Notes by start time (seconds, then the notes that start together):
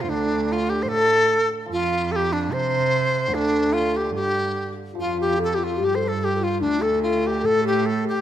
Already playing: F3
0.01 D3 F4
0.05 D2
0.09 D4
0.52 F4
0.69 G4
0.83 A2 C5
0.88 A4
1.66 F2 F3
1.72 F4
2.12 A4
2.16 G4
2.33 D4
2.41 D4
2.50 C3 C5
3.27 D2 D3
3.35 D4
3.73 F4
3.97 G4
4.13 G2 G4
4.93 F2 F3 F4
5.00 F4
5.21 G4
5.38 A4
5.44 A4
5.54 G4
5.58 F4
5.64 F4
5.77 G2 G4
5.84 G4
5.95 A4 C5
6.03 C5
6.08 A4
6.24 G4
6.39 F4
6.43 F4
6.61 D2 D4
6.82 A4
7.03 F4
7.27 G4
7.42 A2 A4
7.64 G4
7.85 A4
8.02 G4 A4
8.08 G4